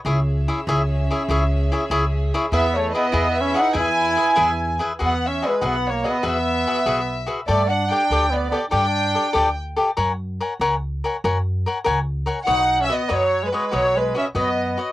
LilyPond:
<<
  \new Staff \with { instrumentName = "Violin section" } { \time 6/8 \key e \major \tempo 4. = 97 r2. | r2. | e''8 cis''8 dis''4 e''8 fis''8 | gis''2~ gis''8 r8 |
\key e \lydian fis''8 e''8 b'8 fis''8 cis''8 dis''8 | e''2~ e''8 r8 | d''8 fis''8 g''4 d''8 d''8 | g''2 r4 |
r2. | r2. | fis''8. e''16 dis''8 cis''8. b'16 b'8 | cis''8 b'8 e''8 dis''4 r8 | }
  \new Staff \with { instrumentName = "Cavaquinho" } { \time 6/8 \key e \major <e' gis' cis'' e''>8 r8 <e' gis' cis'' e''>8 <e' gis' cis'' e''>8 r8 <e' gis' cis'' e''>8 | <e' gis' cis'' e''>8 r8 <e' gis' cis'' e''>8 <e' gis' cis'' e''>8 r8 <e' gis' cis'' e''>8 | <e' gis' b' e''>8 r8 <e' gis' b' e''>8 <e' gis' b' e''>8 r8 <e' gis' b' e''>8 | <e' gis' b' e''>8 r8 <e' gis' b' e''>8 <e' gis' b' e''>8 r8 <e' gis' b' e''>8 |
\key e \lydian <fis' gis' b' e''>8 r8 <fis' gis' b' e''>8 <fis' gis' b' e''>8 r8 <fis' gis' b' e''>8 | <fis' gis' b' e''>8 r8 <fis' gis' b' e''>8 <fis' gis' b' e''>8 r8 <fis' gis' b' e''>8 | <g' a' d'' g''>8 r8 <g' a' d'' g''>8 <g' a' d'' g''>8 r8 <g' a' d'' g''>8 | <g' a' d'' g''>8 r8 <g' a' d'' g''>8 <g' a' d'' g''>8 r8 <g' a' d'' g''>8 |
<ais' cis'' fis'' gis''>8 r8 <ais' cis'' fis'' gis''>8 <ais' cis'' fis'' gis''>8 r8 <ais' cis'' fis'' gis''>8 | <ais' cis'' fis'' gis''>8 r8 <ais' cis'' fis'' gis''>8 <ais' cis'' fis'' gis''>8 r8 <ais' cis'' fis'' gis''>8 | <fis' b' cis'' dis''>8 r8 <fis' b' cis'' dis''>8 <fis' b' cis'' dis''>8 r8 <fis' b' cis'' dis''>8 | <fis' b' cis'' dis''>8 r8 <fis' b' cis'' dis''>8 <fis' b' cis'' dis''>8 r8 <fis' b' cis'' dis''>8 | }
  \new Staff \with { instrumentName = "Violin section" } { \time 6/8 \key e \major << { <cis' e''>2.~ | <cis' e''>2. | <e' b'>2.~ | <e' b'>2. |
\key e \lydian r2. | r2. | r2. | r2. |
r2. | r2. | r2. | r2. | } \\ { gis'2.~ | gis'2.~ | gis'2.~ | gis'2. |
r2. | r2. | r2. | r2. |
r2. | r2. | r2. | r2. | } >> }
  \new Staff \with { instrumentName = "Trumpet" } { \time 6/8 \key e \major r2. | r2. | b8 a8 b4 cis'8 dis'8 | e'2~ e'8 r8 |
\key e \lydian b8 cis'8 gis8 b8 ais8 b8 | b2~ b8 r8 | a8 d'8 d'4 b8 b8 | d'2 r4 |
r2. | r2. | dis'8. cis'16 b8 fis8. gis16 gis8 | fis8 gis8 cis'8 b4 r8 | }
  \new Staff \with { instrumentName = "Upright bass" } { \clef bass \time 6/8 \key e \major cis,4. cis,4. | cis,4. cis,4. | e,4. e,4. | e,4. e,4. |
\key e \lydian e,4. b,,4. | e,4. b,,4. | g,4. d,4. | g,4. d,4. |
fis,4. cis,4. | fis,4. cis,4. | b,,4. fis,4. | b,,4. fis,4. | }
>>